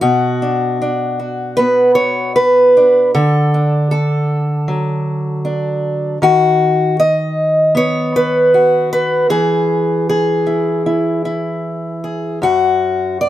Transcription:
0, 0, Header, 1, 2, 480
1, 0, Start_track
1, 0, Tempo, 773196
1, 14, Time_signature, 4, 2, 24, 8
1, 6254, Tempo, 782269
1, 8228, End_track
2, 0, Start_track
2, 0, Title_t, "Steel-string acoustic guitar"
2, 0, Program_c, 0, 25
2, 8, Note_on_c, 0, 66, 89
2, 13, Note_on_c, 0, 47, 71
2, 261, Note_on_c, 0, 62, 46
2, 504, Note_off_c, 0, 62, 0
2, 507, Note_on_c, 0, 62, 46
2, 734, Note_off_c, 0, 66, 0
2, 742, Note_on_c, 0, 66, 45
2, 973, Note_on_c, 0, 71, 92
2, 988, Note_on_c, 0, 59, 64
2, 1208, Note_off_c, 0, 71, 0
2, 1211, Note_on_c, 0, 73, 88
2, 1459, Note_off_c, 0, 73, 0
2, 1463, Note_on_c, 0, 71, 92
2, 1710, Note_off_c, 0, 62, 0
2, 1718, Note_on_c, 0, 62, 44
2, 1921, Note_off_c, 0, 59, 0
2, 1924, Note_off_c, 0, 62, 0
2, 1946, Note_off_c, 0, 71, 0
2, 1947, Note_off_c, 0, 47, 0
2, 1952, Note_on_c, 0, 69, 83
2, 1953, Note_on_c, 0, 50, 76
2, 2196, Note_off_c, 0, 66, 0
2, 2198, Note_on_c, 0, 62, 46
2, 2421, Note_off_c, 0, 69, 0
2, 2428, Note_on_c, 0, 69, 70
2, 2905, Note_on_c, 0, 54, 61
2, 3375, Note_off_c, 0, 62, 0
2, 3382, Note_on_c, 0, 62, 49
2, 3831, Note_off_c, 0, 54, 0
2, 3831, Note_off_c, 0, 62, 0
2, 3833, Note_off_c, 0, 50, 0
2, 3860, Note_off_c, 0, 69, 0
2, 3860, Note_on_c, 0, 51, 76
2, 3867, Note_on_c, 0, 66, 88
2, 4340, Note_off_c, 0, 66, 0
2, 4343, Note_on_c, 0, 75, 97
2, 4809, Note_on_c, 0, 59, 66
2, 4818, Note_off_c, 0, 75, 0
2, 4823, Note_on_c, 0, 73, 101
2, 5066, Note_on_c, 0, 71, 93
2, 5298, Note_off_c, 0, 73, 0
2, 5302, Note_on_c, 0, 66, 48
2, 5534, Note_off_c, 0, 71, 0
2, 5542, Note_on_c, 0, 71, 95
2, 5742, Note_off_c, 0, 59, 0
2, 5746, Note_off_c, 0, 51, 0
2, 5771, Note_on_c, 0, 52, 70
2, 5772, Note_off_c, 0, 71, 0
2, 5774, Note_on_c, 0, 68, 86
2, 5778, Note_off_c, 0, 66, 0
2, 6255, Note_off_c, 0, 68, 0
2, 6266, Note_on_c, 0, 68, 74
2, 6495, Note_on_c, 0, 64, 42
2, 6730, Note_off_c, 0, 64, 0
2, 6737, Note_on_c, 0, 64, 62
2, 6969, Note_off_c, 0, 64, 0
2, 6977, Note_on_c, 0, 64, 46
2, 7452, Note_off_c, 0, 68, 0
2, 7459, Note_on_c, 0, 68, 45
2, 7669, Note_off_c, 0, 64, 0
2, 7670, Note_off_c, 0, 68, 0
2, 7692, Note_on_c, 0, 42, 72
2, 7695, Note_off_c, 0, 52, 0
2, 7700, Note_on_c, 0, 66, 77
2, 8175, Note_off_c, 0, 66, 0
2, 8178, Note_on_c, 0, 74, 85
2, 8228, Note_off_c, 0, 42, 0
2, 8228, Note_off_c, 0, 74, 0
2, 8228, End_track
0, 0, End_of_file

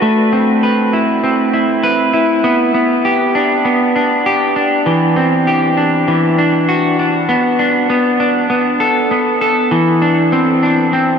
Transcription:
0, 0, Header, 1, 2, 480
1, 0, Start_track
1, 0, Tempo, 606061
1, 13, Time_signature, 4, 2, 24, 8
1, 8861, End_track
2, 0, Start_track
2, 0, Title_t, "Clean electric guitar"
2, 0, Program_c, 0, 27
2, 0, Note_on_c, 0, 71, 60
2, 14, Note_on_c, 0, 57, 69
2, 259, Note_on_c, 0, 60, 55
2, 282, Note_off_c, 0, 71, 0
2, 500, Note_on_c, 0, 71, 58
2, 738, Note_on_c, 0, 64, 54
2, 969, Note_off_c, 0, 60, 0
2, 979, Note_on_c, 0, 60, 58
2, 1212, Note_off_c, 0, 64, 0
2, 1215, Note_on_c, 0, 64, 54
2, 1450, Note_off_c, 0, 71, 0
2, 1453, Note_on_c, 0, 71, 65
2, 1687, Note_off_c, 0, 64, 0
2, 1691, Note_on_c, 0, 64, 57
2, 1928, Note_off_c, 0, 60, 0
2, 1932, Note_on_c, 0, 59, 73
2, 1934, Note_off_c, 0, 57, 0
2, 2164, Note_off_c, 0, 59, 0
2, 2173, Note_on_c, 0, 59, 55
2, 2411, Note_off_c, 0, 71, 0
2, 2414, Note_on_c, 0, 67, 58
2, 2650, Note_off_c, 0, 64, 0
2, 2653, Note_on_c, 0, 62, 53
2, 2881, Note_off_c, 0, 59, 0
2, 2891, Note_on_c, 0, 59, 63
2, 3131, Note_off_c, 0, 62, 0
2, 3134, Note_on_c, 0, 62, 55
2, 3365, Note_off_c, 0, 67, 0
2, 3375, Note_on_c, 0, 67, 60
2, 3609, Note_off_c, 0, 62, 0
2, 3612, Note_on_c, 0, 62, 54
2, 3850, Note_on_c, 0, 52, 75
2, 3900, Note_off_c, 0, 59, 0
2, 3902, Note_off_c, 0, 67, 0
2, 4090, Note_on_c, 0, 60, 57
2, 4113, Note_off_c, 0, 62, 0
2, 4334, Note_on_c, 0, 67, 55
2, 4572, Note_on_c, 0, 62, 56
2, 4805, Note_off_c, 0, 52, 0
2, 4814, Note_on_c, 0, 52, 72
2, 4860, Note_off_c, 0, 60, 0
2, 4862, Note_off_c, 0, 67, 0
2, 5053, Note_off_c, 0, 62, 0
2, 5056, Note_on_c, 0, 62, 57
2, 5295, Note_on_c, 0, 66, 58
2, 5535, Note_off_c, 0, 62, 0
2, 5538, Note_on_c, 0, 62, 55
2, 5772, Note_on_c, 0, 59, 82
2, 5822, Note_off_c, 0, 52, 0
2, 5822, Note_off_c, 0, 66, 0
2, 6010, Note_off_c, 0, 62, 0
2, 6013, Note_on_c, 0, 62, 59
2, 6244, Note_off_c, 0, 59, 0
2, 6254, Note_on_c, 0, 59, 60
2, 6491, Note_off_c, 0, 62, 0
2, 6494, Note_on_c, 0, 62, 64
2, 6721, Note_off_c, 0, 59, 0
2, 6730, Note_on_c, 0, 59, 67
2, 6971, Note_on_c, 0, 69, 62
2, 7206, Note_off_c, 0, 59, 0
2, 7215, Note_on_c, 0, 59, 57
2, 7446, Note_off_c, 0, 69, 0
2, 7456, Note_on_c, 0, 69, 62
2, 7693, Note_on_c, 0, 52, 83
2, 7742, Note_off_c, 0, 59, 0
2, 7743, Note_off_c, 0, 69, 0
2, 7931, Note_off_c, 0, 62, 0
2, 7934, Note_on_c, 0, 62, 55
2, 8176, Note_on_c, 0, 60, 63
2, 8413, Note_off_c, 0, 62, 0
2, 8416, Note_on_c, 0, 62, 64
2, 8647, Note_off_c, 0, 60, 0
2, 8657, Note_on_c, 0, 60, 67
2, 8861, Note_off_c, 0, 52, 0
2, 8861, Note_off_c, 0, 60, 0
2, 8861, Note_off_c, 0, 62, 0
2, 8861, End_track
0, 0, End_of_file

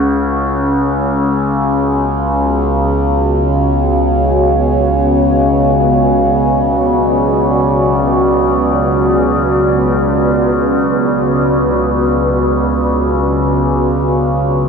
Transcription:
0, 0, Header, 1, 3, 480
1, 0, Start_track
1, 0, Tempo, 500000
1, 14100, End_track
2, 0, Start_track
2, 0, Title_t, "Ambient pad"
2, 0, Program_c, 0, 92
2, 0, Note_on_c, 0, 61, 77
2, 0, Note_on_c, 0, 68, 75
2, 0, Note_on_c, 0, 73, 86
2, 0, Note_on_c, 0, 78, 73
2, 624, Note_on_c, 0, 49, 78
2, 633, Note_off_c, 0, 73, 0
2, 639, Note_off_c, 0, 68, 0
2, 643, Note_off_c, 0, 61, 0
2, 1144, Note_on_c, 0, 66, 74
2, 1172, Note_on_c, 0, 59, 74
2, 1790, Note_on_c, 0, 73, 64
2, 2244, Note_off_c, 0, 78, 0
2, 4673, Note_on_c, 0, 74, 74
2, 8561, Note_on_c, 0, 71, 61
2, 8840, Note_off_c, 0, 73, 0
2, 14100, Note_off_c, 0, 49, 0
2, 14100, Note_off_c, 0, 59, 0
2, 14100, Note_off_c, 0, 66, 0
2, 14100, Note_off_c, 0, 71, 0
2, 14100, Note_off_c, 0, 74, 0
2, 14100, End_track
3, 0, Start_track
3, 0, Title_t, "Synth drone"
3, 0, Program_c, 1, 95
3, 0, Note_on_c, 1, 37, 68
3, 0, Note_on_c, 1, 49, 71
3, 14100, Note_off_c, 1, 37, 0
3, 14100, Note_off_c, 1, 49, 0
3, 14100, End_track
0, 0, End_of_file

